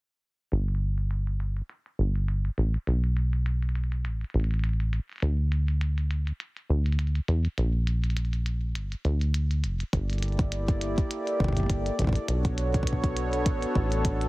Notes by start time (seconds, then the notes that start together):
0.52 G1, closed hi-hat
0.68 closed hi-hat
0.75 closed hi-hat
0.98 closed hi-hat
1.11 closed hi-hat
1.27 closed hi-hat
1.40 closed hi-hat
1.57 closed hi-hat
1.69 closed hi-hat
1.86 closed hi-hat
1.99 G1
2.15 closed hi-hat
2.28 closed hi-hat
2.45 closed hi-hat
2.58 A1, closed hi-hat
2.74 closed hi-hat
2.87 B1, closed hi-hat
3.04 closed hi-hat
3.17 closed hi-hat
3.33 closed hi-hat
3.46 closed hi-hat
3.62 closed hi-hat
3.69 closed hi-hat
3.75 closed hi-hat
3.84 closed hi-hat
3.92 closed hi-hat
4.05 A1, closed hi-hat
4.21 closed hi-hat
4.24 closed hi-hat
4.30 closed hi-hat
4.34 A1, closed hi-hat
4.40 closed hi-hat
4.44 closed hi-hat
4.51 closed hi-hat
4.54 closed hi-hat
4.59 closed hi-hat
4.64 closed hi-hat
4.69 closed hi-hat
4.73 closed hi-hat
4.80 closed hi-hat
4.93 closed hi-hat
5.09 closed hi-hat
5.12 closed hi-hat
5.16 closed hi-hat
5.18 closed hi-hat
5.20 closed hi-hat
5.22 D2, closed hi-hat
5.52 closed hi-hat
5.68 closed hi-hat
5.81 closed hi-hat
5.98 closed hi-hat
6.11 closed hi-hat
6.27 closed hi-hat
6.40 closed hi-hat
6.57 closed hi-hat
6.70 D2
6.86 closed hi-hat
6.92 closed hi-hat
6.99 closed hi-hat
7.07 closed hi-hat
7.15 closed hi-hat
7.28 E2, closed hi-hat
7.45 closed hi-hat
7.58 A#1, closed hi-hat
7.87 closed hi-hat
8.04 closed hi-hat
8.10 closed hi-hat
8.17 closed hi-hat
8.25 closed hi-hat
8.33 closed hi-hat
8.46 closed hi-hat
8.75 G1, closed hi-hat
8.92 closed hi-hat
9.05 D2, closed hi-hat
9.21 closed hi-hat
9.34 closed hi-hat
9.51 closed hi-hat
9.64 F1, closed hi-hat
9.80 closed hi-hat
9.93 G1 A#3 E4 G4 A4 D5, kick, closed hi-hat
10.10 closed hi-hat
10.13 closed hi-hat
10.18 closed hi-hat
10.23 closed hi-hat
10.28 closed hi-hat
10.32 closed hi-hat
10.39 kick, closed hi-hat
10.52 closed hi-hat
10.68 kick, closed hi-hat
10.81 closed hi-hat
10.98 kick, closed hi-hat
11.11 closed hi-hat
11.27 closed hi-hat
11.40 G1, kick
11.44 kick
11.48 kick
11.53 kick
11.57 kick, closed hi-hat
11.60 kick
11.63 kick
11.66 kick
11.70 kick, closed hi-hat
11.86 closed hi-hat
11.99 A1, kick, closed hi-hat
12.02 kick
12.04 kick
12.07 kick
12.09 kick
12.13 kick, closed hi-hat
12.28 B1 B3 D4 F#4 C#5, closed hi-hat
12.45 kick, closed hi-hat
12.58 closed hi-hat
12.74 kick, closed hi-hat
12.83 kick
12.87 closed hi-hat
12.93 kick
13.04 kick, closed hi-hat
13.17 closed hi-hat
13.33 closed hi-hat
13.46 A1, kick, closed hi-hat
13.62 closed hi-hat
13.75 A1, kick
13.92 closed hi-hat
14.05 kick, closed hi-hat
14.21 closed hi-hat